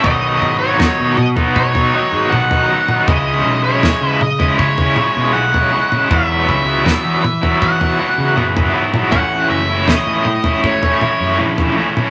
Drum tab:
SD |----o-----------|----o-----------|----o-----------|----o-----------|
T2 |------o-----o--o|------o---o----o|------o-----o--o|------o---o----o|
FT |o---o--o-o---o--|o---o--o-o---o--|o---o--o-o---o--|o---o--o-o---o--|
BD |o-o-----o-------|o-------o-------|o-o-----o-------|o-------o-------|